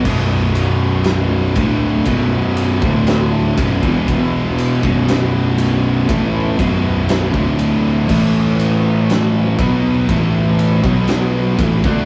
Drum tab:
CC |x---------------|----------------|x---------------|
RD |--x-x-x-x-x-x-x-|x-x-x-x-x-x-x-x-|--x-x-x-x-x-x-x-|
SD |----o-------o---|----o-------o---|----o-------o---|
BD |o-----o-o--o--oo|o--o----o-o--o--|o-----o-o--o--oo|